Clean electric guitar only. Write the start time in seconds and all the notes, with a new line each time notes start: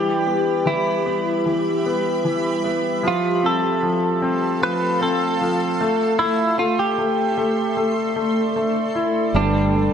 Already playing: G4
0.67 E4
3.08 F4
3.46 A4
4.63 B4
5.03 A4
6.19 E4
6.59 F4
6.79 G4
9.36 D4